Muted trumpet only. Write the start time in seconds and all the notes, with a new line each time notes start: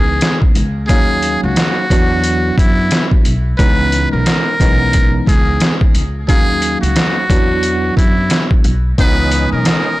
Already playing: G#4
0.87 G#4
1.44 F#4
2.58 E4
3.58 B4
4.12 A#4
5.28 G#4
6.28 G#4
6.81 F#4
7.97 E4
9.00 B4
9.53 A#4